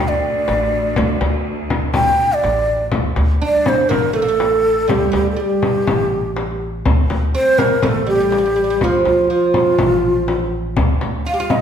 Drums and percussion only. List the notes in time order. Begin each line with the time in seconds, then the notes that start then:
0.48 frame drum
0.96 frame drum
1.21 frame drum
1.70 frame drum
1.94 frame drum
2.44 frame drum
2.92 frame drum
3.16 frame drum
3.66 frame drum
3.91 frame drum
4.40 frame drum
4.89 frame drum
5.13 frame drum
5.62 frame drum
5.87 frame drum
6.37 frame drum
6.85 frame drum
7.10 frame drum
7.58 frame drum
7.83 frame drum
8.32 frame drum
8.81 frame drum
9.05 frame drum
9.54 frame drum
9.78 frame drum
10.28 frame drum
10.77 frame drum
11.01 frame drum
11.50 frame drum